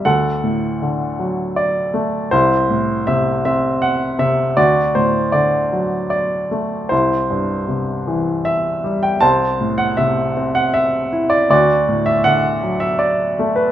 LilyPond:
<<
  \new Staff \with { instrumentName = "Grand piano" } { \time 3/4 \key d \mixolydian \tempo 4 = 79 << { fis''2 d''4 | c''4 e''8 e''8 fis''8 e''8 | d''8 c''8 d''4 d''4 | c''2 e''8. g''16 |
a''8. fis''16 e''8. fis''16 e''8. d''16 | d''8. e''16 fis''8. e''16 d''8. b'16 | } \\ { a'2 r4 | e'4. r4. | fis'4. r4. | e'2 r4 |
c''4. r4. | fis'4. r4. | } >> }
  \new Staff \with { instrumentName = "Grand piano" } { \clef bass \time 3/4 \key d \mixolydian d,8 a,8 d8 fis4 a8 | c,8 a,8 c8 c'4 c8 | d,8 a,8 d8 fis4 a8 | c,8 g,8 c8 e4 g8 |
c,8 a,8 c8 c'4 e'8 | d,8 a,8 d8 fis4 a8 | }
>>